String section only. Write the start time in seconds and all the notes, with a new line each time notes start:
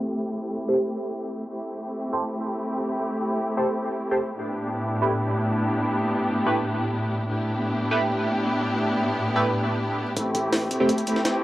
Already playing: A3 C4 E4 G4
1.49 A3 C4 E4 G4
4.38 A2 B3 D4 E4 G4
7.28 A2 B3 D4 E4 G4
10.17 A3 C4 E4 G4
10.71 A3 C4 E4 G4
11.07 A3 C4 E4 G4
11.25 A3 C4 E4 G4